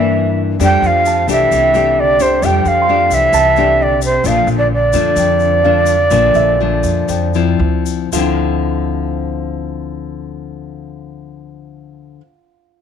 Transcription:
Already playing: G2 E3 A#3 D4 E5
0.59 F2 F3 G3 A3 D4 G4, shaker
0.64 G5
0.82 F2 F3, shaker
0.86 F5
1.06 A5, shaker
1.28 C2 E3 A3 D4 G4 E5, shaker
1.51 C2 C3, shaker
1.74 A3 D4 G4, shaker
1.98 D3 D5
2.20 C3 A3 D4 G4 C5, shaker
2.42 F2 F3 G3 A3 D4 G4 G5, shaker
2.65 F2 F3 F5 G5, shaker
2.82 C6
2.89 A3 D4 G4
3.10 C2 E3, shaker
3.14 E5
3.33 C2 C3 A5, shaker
3.56 A3 D4 G4, shaker
3.80 D3 D5
4.02 C3 C5, shaker
4.24 A#1 A#2 F3 A3 D4 F5, shaker
4.47 A#1, shaker
4.55 D3 D5
4.71 D3 D5
4.93 F2 F3 A3 D4, shaker
5.16 F2, shaker
5.39 shaker
5.64 F3 A3 D4 F5
5.86 shaker
6.11 A#1 A#2 F3 A3 D4, shaker
6.34 A#1 E5, shaker
6.61 F3 A3 D4
6.83 F2, shaker
7.08 F2, shaker
7.34 F3 C4 E4, shaker
7.59 D2
7.86 shaker
8.12 D2 D3 F3 F4, shaker
8.17 C4 E4

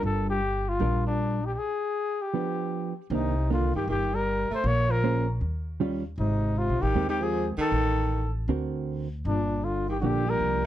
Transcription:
Already playing: G3 D4 F4 A#4
0.03 G1 A4
0.30 G4
0.68 F4
0.80 A#1 G3 D4 F4 A#4
1.07 D4
1.46 G4
1.54 G4
1.58 G#4
2.22 G4
2.34 F3 B3 D4
3.10 C2 C3 D#3 A#3 D4 D#4
3.50 D3 D#3 A#3 D4 F4
3.74 G2 D#3 G4
3.87 G1 D#3 G4
4.13 G3 A#4
4.50 A3 C5, muted upright bass stroke
4.64 A#1 A#3 C#5
4.89 F3 A#4
5.04 A#3 C#4 G#4 C5
5.41 D#2
5.80 D#3 G3 C#4 F4
6.18 G#1 C3 D#4
6.56 C3 F4
6.69 A#1
6.81 A1 D#3 G4
6.94 D#2 G#3 C4 G4 A#4
7.08 D#3 G4
7.20 F3 G#4
7.57 D#3 A4, muted upright bass stroke
7.71 A1
8.48 D2 D3 C4 F#4 A#4
9.25 G1 A#2 D4
9.64 D3 F4
9.89 D#3 G4
9.99 A#1 D3 F3 F#4
10.04 A#3 D4 G4
10.26 G3 A#4
10.40 C2

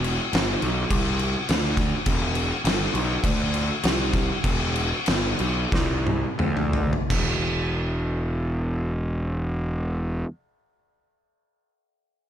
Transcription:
Already playing: E1
0.04 crash
0.33 G1, snare, crash
0.62 B1, crash
0.90 C2, kick, crash
1.19 crash
1.49 D2, snare, crash
1.77 kick, snare, crash
2.06 E1, kick, crash
2.35 crash
2.64 G1, snare, crash
2.94 B1, crash
3.24 D2, kick, crash
3.54 crash
3.83 C2, snare, crash
4.13 kick, snare, crash
4.44 E1, kick, crash
4.76 crash
5.06 G1, snare, crash
5.39 B1, crash
5.72 C2, kick, snare
6.07 high tom
6.39 D2, mid tom
6.57 mid tom
6.73 floor tom
6.93 floor tom
7.10 E1, kick, crash

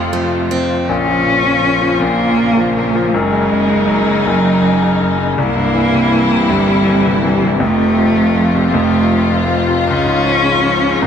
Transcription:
Already playing: F2 C3 F3 A3 F4
0.13 F3 A3
0.51 C4
0.89 A#1 A#2 C#3 F3 A#3 C#4 F4
1.08 F3
1.26 A#2
1.44 F3
1.63 A#2
1.82 F3
2.00 A#1 A#2 A#3
2.20 F3
2.38 A#2
2.57 F3
2.76 A#2 A#3
2.95 F3
3.13 F#1 F#2 F#3 G#3 D#4
3.32 C#3
3.51 F#2
3.70 C#3
3.89 F#2
4.08 C#3
4.25 F#1 F#2 F#3
4.45 C#3
4.62 F#2
4.82 C#3
5.01 F#2
5.19 C#3
5.37 C2 C3 G3 A#3 E4
5.56 G2
5.74 E3
5.94 C3
6.12 E3
6.31 C3
6.49 G1 G2 G3
6.69 G2
6.87 E3
7.05 C3
7.23 E3 G3
7.41 C3
7.59 F1 F2 F3 A3 F4
7.78 C3
7.98 F3
8.15 C3
8.36 F3
8.55 C3
8.69 A#3
8.74 F1 F2 A3
8.92 C3
9.12 F3
9.30 C3
9.48 F3
9.67 C3
9.87 C#2 C#3 F3 G#3 C#4
10.05 G#2
10.25 F3
10.44 C#3
10.62 F3
10.82 C#3
11.01 G#1 G#2 A#3

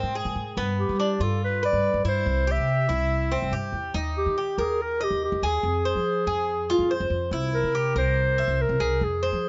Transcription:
Already playing: C4 A#4
0.03 G#2
0.15 G#4
0.25 G#2
0.35 G#2
0.57 G2 B3
0.79 G4
0.89 G3
1.00 D4
1.20 G2 F4 A4
1.44 B4
1.63 B4 D5
1.73 G2
1.94 G2
2.04 G2 E4 C5
2.26 C2
2.47 G4 E5
2.58 C3
2.89 C2 E4
3.32 C4
3.42 C2
3.51 G2 G4
3.72 E2
3.94 D#2 D#4
4.18 G4
4.26 D#3
4.38 G4
4.58 D#2 G#4 A#4
4.81 A#4
5.01 G4 D#5
5.11 D#2
5.24 G4
5.32 D#2
5.42 D#2 G#4
5.63 F2
5.85 C5
5.95 F3
6.27 F2 G#4
6.70 F4
6.79 F2
6.91 C5
7.00 F2
7.10 F2
7.31 C2 E4
7.54 A#4
7.64 C3
7.75 G4
7.95 C2 A#4 C5
8.38 E5
8.48 C2
8.62 A#4
8.69 C2
8.80 C2 G#4
9.01 F2 G#4
9.23 C5
9.33 F3

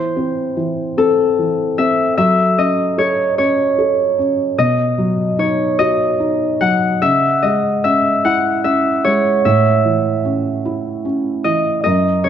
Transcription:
Already playing: E3 C5
0.17 C4
0.57 E3
0.97 C4 A4
1.39 E3
1.78 C4 E5
2.18 F#3 E5
2.58 C#4 D#5
2.98 A4 C#5
3.38 C#4 C#5
3.78 A4
4.18 C#4
4.58 B2 D#5
4.98 F#3
5.39 D#4 C#5
5.79 F#4 D#5
6.20 D#4
6.61 F#3 F#5
7.02 C#3 E5
7.42 G#3 D#5
7.84 C#4 E5
8.25 E4 F#5
8.64 C#4 E5
9.04 G#3 C#5
9.45 A2 E5
9.85 E3
10.25 C#4
10.65 E4
11.05 C#4
11.44 E3 D#5
11.84 F#2 D#5
12.24 C#3 C#5

